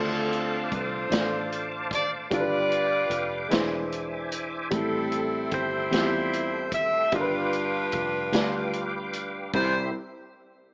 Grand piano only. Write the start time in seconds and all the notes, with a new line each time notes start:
Already playing: D3 A3 D4 F4 C5
1.10 A3 D4 F4 D5
2.30 G2 G3 D4 F4 A4
2.40 B4
3.48 E3 G#3 D4 E4 C5
4.71 A2 G3 C4 E4 A4
5.92 G3 C4 E4 F4
6.01 G4
7.12 G2 G3 D4 F4 A#4
7.21 B4
8.33 G3 D4 F4 D5
9.55 C2 G3 C4 E4 B5